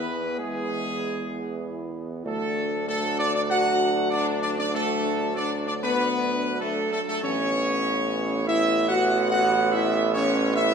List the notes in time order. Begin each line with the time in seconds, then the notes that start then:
Already playing: E2 E3 B3 B4
0.38 G#3 G#4
2.25 D2 F#3 A3 D4 A4
2.87 A3 A4
3.17 D4 D5
3.33 D4 D5
3.49 F#4 F#5
4.11 D4 D5
4.42 D4 D5
4.58 D4 D5
4.74 A3 A4
5.35 D4 D5
5.66 D4 D5
5.81 B3 B4
6.60 A3 A4
6.92 A3 A4
7.07 A3 A4
7.22 A1 E3 B3 C#4 C#5
8.47 E4 E5
8.88 F#4 F#5
9.30 F#4 F#5
9.72 E4 E5
10.13 C#4 C#5
10.55 E4 E5